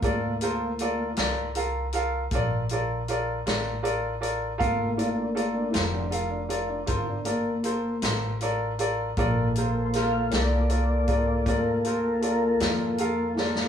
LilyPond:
<<
  \new Staff \with { instrumentName = "Upright piano" } { \time 12/8 \key g \minor \tempo 4. = 53 <f' a' bes' d''>8 <f' a' bes' c''>8 <f' a' bes' d''>8 <f' a' bes' d''>8 <f' a' bes' f''>8 <f' a' bes' f''>8 <f' a' bes' d''>8 <f' a' bes' d''>8 <f' a' bes' d''>8 <f' a' bes' d''>8 <f' a' bes' d''>8 <f' a' bes' d''>8 | <f' a' bes' f''>8 <f' a' bes' d''>8 <f' a' bes' d''>8 <f' a' bes' c''>8 <f' a' bes' f''>8 <f' a' bes' d''>8 <f' a' bes' c''>8 <f' a' bes' d''>8 <f' a' bes' c''>8 <f' a' bes' c''>8 <f' a' bes' d''>8 <f' a' bes' d''>8 | <f' a' bes' d''>8 <f' a' bes' c''>8 <f' a' bes' c''>8 <f' a' bes' d''>8 <f' a' bes' d''>8 <f' a' bes' d''>8 <f' a' bes' d''>8 <f' a' bes' c''>8 <f' a' bes' d''>8 <f' a' bes' d''>8 <f' a' bes' f''>8 <f' a' bes' d''>8 | }
  \new Staff \with { instrumentName = "Tonewheel organ" } { \time 12/8 \key g \minor r1. | r8 <e' f'>16 d'16 f'16 d'16 <e' f'>16 d'16 f'16 d'16 f'16 d'16 f'16 d'16 <a bes>4 r4. | r8 c''8 f''8 <cis'' d''>8 d''4 bes'4 bes'8 r4 <e' f'>8 | }
  \new Staff \with { instrumentName = "Tonewheel organ" } { \time 12/8 \key g \minor <a bes f'>4. r1 r8 | <a bes f'>4. r1 r8 | <bes f' a'>1. | }
  \new Staff \with { instrumentName = "Upright bass" } { \clef bass \time 12/8 \key g \minor d,4. c,4. bes,,4. a,,4. | g,,4. f,,4. g,,4. a,,4. | bes,,4. c,4. d,4. f,4. | }
  \new DrumStaff \with { instrumentName = "Drums" } \drummode { \time 12/8 <hh bd>8 hh8 hh8 <hh sn>8 hh8 hh8 <hh bd>8 hh8 hh8 <hh sn>8 hh8 hh8 | <hh bd>8 hh8 hh8 <hh sn>8 hh8 hh8 <hh bd>8 hh8 hh8 <hh sn>8 hh8 hh8 | <hh bd>8 hh8 <hh sn>8 <hh sn>8 hh8 <hh bd>8 <hh bd>8 hh8 hh8 <hh sn>8 hh8 sn16 sn16 | }
>>